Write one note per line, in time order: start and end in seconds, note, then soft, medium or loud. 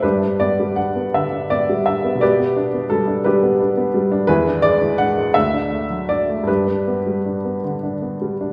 0.02 2.18 G2 soft
0.02 0.21 D4 soft
0.02 0.37 G4 soft
0.02 0.40 B4 medium
0.23 0.52 D4 soft
0.40 0.70 B3 soft
0.40 0.77 D5 medium
0.60 0.88 G3 soft
0.76 1.06 D4 soft
0.76 1.13 F#5 medium
0.96 1.25 B3 soft
1.14 1.44 D3 soft
1.14 1.51 E5 medium
1.33 1.61 D4 soft
1.50 1.79 B3 soft
1.50 1.86 D5 medium
1.69 1.97 G3 soft
1.86 2.15 D4 soft
1.86 2.21 E5 medium
2.05 2.22 B3 soft
2.15 4.21 B2 soft
2.21 2.88 G4 medium
2.21 2.88 B4 medium
2.21 2.91 D5 medium
2.39 2.67 B3 soft
2.56 2.84 D4 medium
2.74 3.02 B3 soft
2.90 3.19 G3 soft
2.90 3.25 A4 medium
3.08 3.24 D4 soft
3.24 3.53 G3 soft
3.24 3.59 D4 soft
3.24 4.24 G4 medium
3.24 4.26 B4 medium
3.43 3.70 B3 soft
3.60 3.87 D4 soft
3.77 4.04 B3 soft
3.94 4.21 G3 soft
4.12 4.28 D4 medium
4.27 5.32 E2 medium
4.27 4.61 E4 medium
4.27 4.60 G#4 medium
4.27 4.62 B4 medium
4.47 4.74 D4 soft
4.62 4.92 G#3 medium
4.62 4.98 D5 medium
4.81 5.10 E3 soft
4.98 5.28 D4 soft
4.98 5.35 F#5 medium
5.18 5.36 G#3 soft
5.34 6.45 D2 soft
5.34 6.09 E5 medium
5.54 5.83 D4 soft
5.72 6.02 A3 soft
5.90 6.21 F#3 soft
6.09 6.40 D4 soft
6.09 6.48 D5 medium
6.29 6.48 A3 soft
6.44 8.53 G2 soft
6.44 7.63 B4 medium
6.48 6.66 D4 soft
6.48 7.59 G4 soft
6.68 6.98 D4 soft
6.88 7.18 B3 soft
7.07 7.37 G3 soft
7.26 7.56 D4 soft
7.45 7.75 B3 soft
7.64 7.94 D3 soft
7.83 8.14 D4 soft
8.02 8.33 B3 soft
8.21 8.53 G3 soft
8.41 8.53 D4 soft